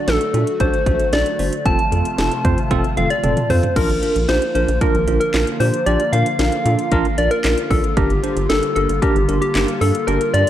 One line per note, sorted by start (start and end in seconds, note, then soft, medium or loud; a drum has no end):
0.00 1.61 D3 medium
0.00 1.63 F#3 medium
0.00 1.63 A3 medium
0.00 1.63 F#4 medium
0.08 0.18 A#1 loud
0.08 0.21 D4 medium
0.08 0.21 F#4 medium
0.08 0.21 A4 medium
0.08 0.60 A4 loud
0.08 snare loud
0.08 closed hi-hat medium
0.21 closed hi-hat medium
0.34 0.44 A#2 loud
0.34 0.47 D4 medium
0.34 0.47 F#4 medium
0.34 0.47 A4 medium
0.34 closed hi-hat medium
0.47 closed hi-hat medium
0.60 0.71 A#1 loud
0.60 0.74 D4 loud
0.60 0.74 F#4 medium
0.60 0.74 A4 loud
0.60 1.15 C5 loud
0.60 kick medium
0.60 closed hi-hat medium
0.74 closed hi-hat soft
0.86 0.97 A#1 loud
0.86 1.00 D4 medium
0.86 1.00 F#4 medium
0.86 1.00 A4 medium
0.86 kick medium
0.86 closed hi-hat medium
1.00 closed hi-hat medium
1.13 1.23 A#1 loud
1.13 1.26 D4 medium
1.13 1.26 F#4 medium
1.13 1.26 A4 medium
1.13 1.65 D5 loud
1.13 snare loud
1.13 closed hi-hat medium
1.26 closed hi-hat medium
1.39 1.50 G1 medium
1.39 1.53 D4 medium
1.39 1.53 F#4 medium
1.39 1.53 C5 medium
1.39 open hi-hat medium
1.53 closed hi-hat medium
1.65 1.76 F1 loud
1.65 3.74 C3 medium
1.65 3.74 F3 medium
1.65 3.74 A3 medium
1.65 1.79 C4 loud
1.65 1.79 F4 medium
1.65 3.74 F4 medium
1.65 1.79 A4 loud
1.65 2.93 A5 loud
1.65 kick loud
1.65 closed hi-hat medium
1.79 closed hi-hat medium
1.92 2.02 F2 loud
1.92 2.05 C4 medium
1.92 2.05 F4 medium
1.92 2.05 A4 medium
1.92 closed hi-hat medium
2.05 closed hi-hat medium
2.18 2.29 F1 loud
2.18 2.32 C4 medium
2.18 2.32 F4 medium
2.18 2.32 A4 medium
2.18 snare loud
2.18 closed hi-hat medium
2.31 closed hi-hat medium
2.45 2.55 F2 loud
2.45 2.58 C4 medium
2.45 2.58 F4 medium
2.45 2.58 C5 loud
2.45 kick medium
2.45 closed hi-hat medium
2.58 closed hi-hat medium
2.71 2.81 F1 loud
2.71 2.84 C4 loud
2.71 2.84 F4 loud
2.71 2.84 A4 loud
2.71 kick medium
2.71 closed hi-hat medium
2.71 high tom medium
2.84 closed hi-hat soft
2.97 3.08 F1 loud
2.97 3.11 C4 medium
2.97 3.11 F4 medium
2.97 3.11 A4 loud
2.97 3.12 F5 loud
2.97 closed hi-hat medium
2.97 mid tom medium
3.10 3.52 D5 loud
3.10 closed hi-hat medium
3.23 3.34 F1 loud
3.23 3.37 C4 medium
3.23 3.37 F4 medium
3.23 3.37 A4 loud
3.23 3.48 A5 medium
3.23 closed hi-hat medium
3.23 mid tom medium
3.37 closed hi-hat medium
3.37 mid tom medium
3.50 3.60 F2 loud
3.50 3.63 C4 medium
3.50 3.63 F4 medium
3.50 3.63 A4 loud
3.50 3.78 C5 medium
3.50 3.74 F5 medium
3.50 floor tom loud
3.50 open hi-hat medium
3.63 closed hi-hat medium
3.63 floor tom medium
3.76 3.87 A#1 loud
3.76 10.50 D3 medium
3.76 7.93 F3 medium
3.76 7.93 A#3 medium
3.76 3.90 D4 loud
3.76 10.50 F4 medium
3.76 3.89 F4 medium
3.76 4.30 A#4 loud
3.76 3.90 A#4 loud
3.76 kick loud
3.76 closed hi-hat medium
3.76 crash loud
3.89 4.00 A#1 medium
3.89 closed hi-hat medium
4.02 4.16 D4 medium
4.02 4.16 F4 medium
4.02 4.16 A#4 medium
4.02 closed hi-hat medium
4.16 4.26 A#1 medium
4.16 closed hi-hat medium
4.28 4.39 A#1 loud
4.28 4.42 D4 medium
4.28 4.42 F4 medium
4.28 4.42 G4 medium
4.28 4.54 C5 medium
4.28 snare loud
4.28 closed hi-hat medium
4.42 closed hi-hat medium
4.55 4.66 A#1 loud
4.55 4.68 D4 medium
4.55 4.68 F4 medium
4.55 4.69 A#4 medium
4.55 4.79 C5 medium
4.55 closed hi-hat medium
4.68 4.79 A#1 loud
4.68 closed hi-hat medium
4.81 4.95 D4 loud
4.81 4.95 F4 medium
4.81 5.18 A#4 loud
4.81 4.95 A#4 loud
4.81 kick medium
4.81 closed hi-hat medium
4.95 5.05 A#1 loud
4.95 closed hi-hat soft
5.08 5.18 A#1 loud
5.08 5.21 D4 medium
5.08 5.21 F4 medium
5.08 5.21 A#4 medium
5.08 closed hi-hat medium
5.20 5.62 A#4 medium
5.20 closed hi-hat medium
5.34 5.44 A#1 loud
5.34 5.47 D4 medium
5.34 5.47 F4 medium
5.34 5.47 A#4 medium
5.34 snare loud
5.34 clap medium
5.34 closed hi-hat medium
5.47 closed hi-hat medium
5.60 5.71 A#2 loud
5.60 5.74 D4 medium
5.60 5.74 F4 medium
5.60 5.74 G4 medium
5.60 5.88 C5 medium
5.60 open hi-hat medium
5.74 closed hi-hat medium
5.86 5.97 A#1 loud
5.86 6.00 D4 loud
5.86 6.00 F4 medium
5.86 6.00 G4 loud
5.86 6.12 D5 loud
5.86 closed hi-hat medium
6.00 closed hi-hat medium
6.13 6.23 A#2 loud
6.13 6.26 D4 medium
6.13 6.26 F4 medium
6.13 6.26 A#4 medium
6.13 7.19 F5 loud
6.13 closed hi-hat medium
6.26 closed hi-hat medium
6.39 6.50 A#1 loud
6.39 6.53 D4 medium
6.39 6.53 F4 medium
6.39 6.53 A#4 medium
6.39 snare loud
6.39 closed hi-hat medium
6.52 closed hi-hat medium
6.65 6.76 A#2 loud
6.65 6.79 D4 medium
6.65 6.79 F4 medium
6.65 6.79 A4 medium
6.65 closed hi-hat medium
6.79 closed hi-hat medium
6.92 7.02 A#1 loud
6.92 7.05 D4 loud
6.92 7.05 F4 loud
6.92 7.05 A#4 loud
6.92 kick medium
6.92 closed hi-hat medium
7.05 closed hi-hat soft
7.18 7.29 A#1 loud
7.18 7.32 D4 medium
7.18 7.32 F4 medium
7.18 7.32 A#4 medium
7.18 7.32 D5 loud
7.18 closed hi-hat medium
7.31 7.70 A#4 loud
7.31 closed hi-hat medium
7.44 7.55 A#1 loud
7.44 7.58 D4 medium
7.44 7.58 F4 medium
7.44 7.58 A#4 medium
7.44 snare loud
7.44 clap medium
7.44 closed hi-hat medium
7.58 closed hi-hat medium
7.70 7.81 A#1 loud
7.70 7.84 D4 medium
7.70 7.84 F4 medium
7.70 7.95 A4 medium
7.70 7.84 A#4 medium
7.70 kick loud
7.70 open hi-hat medium
7.84 closed hi-hat medium
7.97 8.08 G1 loud
7.97 10.50 G3 medium
7.97 10.50 A#3 medium
7.97 8.11 D4 loud
7.97 8.51 G4 loud
7.97 8.10 G4 medium
7.97 8.10 A#4 loud
7.97 kick loud
7.97 closed hi-hat medium
8.10 8.21 G1 medium
8.10 closed hi-hat medium
8.23 8.37 D4 medium
8.23 8.37 G4 medium
8.23 8.37 C5 medium
8.23 closed hi-hat medium
8.36 8.47 G1 loud
8.36 closed hi-hat medium
8.49 8.60 G1 loud
8.49 8.63 D4 medium
8.49 8.63 G4 medium
8.49 8.75 A4 medium
8.49 8.63 A#4 medium
8.49 snare loud
8.49 closed hi-hat medium
8.63 closed hi-hat medium
8.76 8.87 G1 loud
8.76 8.89 D4 medium
8.76 8.89 G4 medium
8.76 9.00 A4 medium
8.76 8.89 A#4 medium
8.76 closed hi-hat medium
8.89 9.00 G1 loud
8.89 closed hi-hat medium
9.02 9.16 D4 loud
9.02 9.39 G4 loud
9.02 9.16 G4 medium
9.02 9.16 A#4 loud
9.02 kick medium
9.02 closed hi-hat medium
9.16 9.26 G1 loud
9.16 closed hi-hat soft
9.29 9.39 G1 loud
9.29 9.42 D4 medium
9.29 9.42 G4 medium
9.29 9.42 A#4 medium
9.29 closed hi-hat medium
9.42 9.83 G4 loud
9.42 closed hi-hat medium
9.55 9.66 G1 loud
9.55 9.68 D4 medium
9.55 9.68 G4 medium
9.55 9.68 A#4 medium
9.55 snare loud
9.55 clap medium
9.55 closed hi-hat medium
9.68 closed hi-hat medium
9.81 9.92 G2 loud
9.81 9.95 D4 medium
9.81 9.95 G4 medium
9.81 10.09 A4 loud
9.81 9.95 A4 medium
9.81 open hi-hat medium
9.95 closed hi-hat medium
10.07 10.18 G1 loud
10.07 10.21 D4 loud
10.07 10.21 G4 medium
10.07 10.35 A#4 loud
10.07 10.21 A#4 loud
10.07 closed hi-hat medium
10.21 closed hi-hat medium
10.34 10.44 G2 loud
10.34 10.47 D4 medium
10.34 10.47 G4 medium
10.34 10.47 A#4 medium
10.34 10.50 D5 loud
10.34 closed hi-hat medium